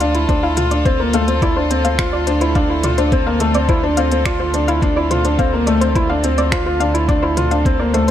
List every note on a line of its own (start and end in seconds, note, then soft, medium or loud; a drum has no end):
0.00 0.26 D2 medium
0.00 0.28 D3 medium
0.00 0.29 C4 medium
0.00 0.12 D4 medium
0.00 8.11 F4 medium
0.00 8.11 A4 medium
0.00 0.06 F5 loud
0.00 closed hi-hat medium
0.15 0.26 E4 medium
0.15 closed hi-hat soft
0.29 8.11 D2 medium
0.29 8.11 D3 medium
0.29 0.40 D4 loud
0.29 0.37 C5 medium
0.29 kick loud
0.29 closed hi-hat soft
0.43 0.54 E4 medium
0.43 0.48 F5 loud
0.52 8.11 C4 medium
0.57 0.68 F4 medium
0.57 closed hi-hat medium
0.57 mid tom medium
0.71 0.82 D4 medium
0.71 0.79 D5 medium
0.71 closed hi-hat soft
0.85 0.97 C4 medium
0.85 0.89 C5 medium
0.85 kick loud
0.85 closed hi-hat soft
1.00 1.11 A#3 medium
1.00 1.08 C5 medium
1.13 1.25 A3 medium
1.13 1.19 F5 medium
1.13 closed hi-hat medium
1.28 1.39 C4 medium
1.28 closed hi-hat soft
1.42 1.54 E4 medium
1.42 1.50 D5 loud
1.42 kick loud
1.42 closed hi-hat soft
1.56 1.68 D4 medium
1.56 1.60 C5 loud
1.70 1.82 C4 medium
1.70 1.78 C5 medium
1.70 closed hi-hat medium
1.85 1.96 C4 medium
1.85 1.90 F5 loud
1.85 closed hi-hat soft
1.99 2.10 F4 medium
1.99 finger snap medium
1.99 kick loud
1.99 closed hi-hat soft
2.13 2.24 F4 medium
2.13 2.21 D5 loud
2.27 2.39 D4 medium
2.27 2.30 C5 loud
2.27 closed hi-hat medium
2.41 2.53 E4 medium
2.41 2.49 C5 medium
2.41 closed hi-hat soft
2.55 2.67 D4 loud
2.55 2.61 F5 medium
2.55 kick loud
2.55 closed hi-hat soft
2.70 2.81 E4 medium
2.83 2.95 F4 medium
2.83 2.92 D5 medium
2.83 closed hi-hat medium
2.83 mid tom medium
2.98 3.09 D4 medium
2.98 3.01 C5 loud
2.98 closed hi-hat soft
3.12 3.24 C4 medium
3.12 3.20 C5 medium
3.12 kick loud
3.12 closed hi-hat soft
3.26 3.38 A#3 medium
3.26 3.32 F5 loud
3.40 3.52 A3 medium
3.40 closed hi-hat medium
3.54 3.66 C4 medium
3.54 3.63 D5 loud
3.54 closed hi-hat soft
3.69 3.80 E4 medium
3.69 3.72 C5 medium
3.69 kick loud
3.69 closed hi-hat soft
3.83 3.95 D4 medium
3.83 3.91 C5 medium
3.97 4.09 C4 medium
3.97 4.02 F5 loud
3.97 closed hi-hat medium
4.12 4.23 C4 medium
4.12 closed hi-hat soft
4.25 4.37 F4 medium
4.25 4.33 D5 loud
4.25 finger snap medium
4.25 kick loud
4.25 closed hi-hat soft
4.40 4.51 F4 medium
4.40 4.43 C5 loud
4.54 4.65 D4 medium
4.54 4.62 C5 medium
4.54 closed hi-hat medium
4.68 4.80 E4 medium
4.68 4.73 F5 loud
4.68 closed hi-hat soft
4.82 4.94 D4 loud
4.82 kick loud
4.82 closed hi-hat soft
4.96 5.08 E4 medium
4.96 5.04 D5 loud
5.11 5.22 F4 medium
5.11 5.14 C5 loud
5.11 closed hi-hat medium
5.11 mid tom medium
5.25 5.36 D4 medium
5.25 5.32 C5 medium
5.25 closed hi-hat soft
5.39 5.50 C4 medium
5.39 5.44 F5 loud
5.39 kick loud
5.39 closed hi-hat soft
5.53 5.64 A#3 medium
5.67 5.78 A3 medium
5.67 5.75 D5 loud
5.67 closed hi-hat medium
5.81 5.92 C4 medium
5.81 5.84 C5 loud
5.81 closed hi-hat soft
5.95 6.07 E4 medium
5.95 6.03 C5 medium
5.95 kick loud
5.95 closed hi-hat soft
6.09 6.21 D4 medium
6.09 6.15 F5 loud
6.24 6.35 C4 medium
6.24 closed hi-hat medium
6.38 6.49 C4 medium
6.38 6.46 D5 loud
6.38 closed hi-hat soft
6.52 6.63 F4 medium
6.52 6.55 C5 loud
6.52 finger snap medium
6.52 kick loud
6.52 closed hi-hat soft
6.66 6.77 F4 medium
6.66 6.74 C5 medium
6.80 6.91 D4 medium
6.80 6.85 F5 loud
6.80 closed hi-hat medium
6.94 7.06 E4 medium
6.94 closed hi-hat soft
7.08 7.20 D4 loud
7.08 7.16 D5 medium
7.08 kick loud
7.08 closed hi-hat soft
7.22 7.34 E4 medium
7.22 7.26 C5 loud
7.37 7.48 F4 medium
7.37 7.45 C5 medium
7.37 closed hi-hat medium
7.37 mid tom medium
7.51 7.62 D4 medium
7.51 7.56 F5 medium
7.51 closed hi-hat soft
7.65 7.77 C4 medium
7.65 kick loud
7.65 closed hi-hat soft
7.79 7.91 A#3 medium
7.79 7.87 D5 medium
7.94 8.05 A3 medium
7.94 7.97 C5 loud
7.94 closed hi-hat medium